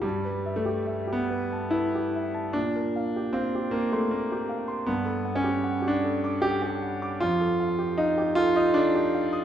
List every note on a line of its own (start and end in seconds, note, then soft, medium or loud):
0.02 2.50 G2 medium
0.02 0.58 G3 medium
0.25 0.58 B4 soft
0.46 0.78 E5 soft
0.56 1.14 A3 medium
0.66 0.99 G4 soft
0.86 1.21 E5 soft
1.07 1.43 G4 soft
1.13 1.73 B3 medium
1.30 1.66 B4 soft
1.53 1.87 A5 soft
1.70 2.53 E4 medium
1.70 2.06 B4 soft
1.95 2.27 G4 soft
2.15 2.47 E5 soft
2.34 2.54 A5 soft
2.53 4.82 A#2 soft
2.53 3.33 D4 medium
2.76 3.07 A#4 soft
2.96 3.27 F5 soft
3.16 3.47 G4 soft
3.33 3.72 C4 medium
3.33 3.65 F5 soft
3.55 3.85 G4 soft
3.71 3.91 A#3 medium
3.71 4.04 A#4 soft
3.92 4.11 A3 medium
3.92 4.23 C6 soft
4.11 4.86 A#3 medium
4.11 4.42 A#4 soft
4.32 4.61 G4 soft
4.49 4.79 F5 soft
4.68 4.86 C6 soft
4.86 7.18 G2 medium
4.86 5.36 B3 medium
5.05 5.35 A4 soft
5.25 5.55 F#5 soft
5.35 5.88 C#4 medium
5.44 5.74 G4 soft
5.64 5.95 F#5 soft
5.82 6.15 G4 soft
5.88 6.43 D4 medium
6.04 6.37 A4 soft
6.24 6.56 D6 soft
6.42 6.61 G4 medium
6.42 6.75 A4 soft
6.62 6.94 G4 soft
6.82 7.13 F#5 soft
7.02 7.21 D6 soft
7.20 9.45 F2 medium
7.20 7.97 F4 medium
7.40 7.71 A4 soft
7.60 7.90 F5 soft
7.79 8.09 G4 soft
7.98 8.36 D#4 medium
7.98 8.29 F5 soft
8.18 8.48 G4 soft
8.35 8.55 F4 loud
8.35 8.67 A4 medium
8.56 8.74 D#4 medium
8.56 8.86 D#6 soft
8.74 9.45 D4 medium
8.74 9.06 A4 soft
8.95 9.25 G4 soft
9.15 9.44 F5 soft
9.33 9.45 D#6 soft